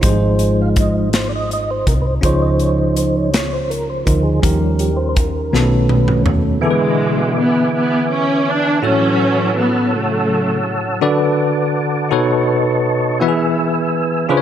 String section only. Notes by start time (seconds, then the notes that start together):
6.66 B2 D3 G#3
7.39 B3
7.77 B3
8.13 C#4
8.49 D4
8.85 E3 F#3 C#4
9.57 B3
9.95 C#3 F#3 A3